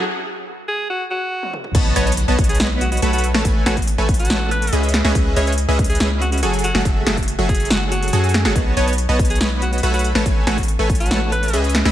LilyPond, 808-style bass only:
\new Staff \with { instrumentName = "808-style bass" } { \clef bass \time 4/4 \key a \lydian \tempo 4 = 141 r1 | b,,8 b,,8. b,,8. b,,4 b,,8. a,,16 | a,,8 a,,8. a,,8. a,,4 cis,8. cis,16 | r8 cis,8. cis,8. cis,4 fis,,8. fis,,16 |
fis,,8 fis,,8. fis,,8. fis,,4 fis,8. fis,,16 | b,,8 b,,8. b,,8. b,,4 b,,8. a,,16 | r8 a,,8. a,,8. a,,4 cis,8. cis,16 | }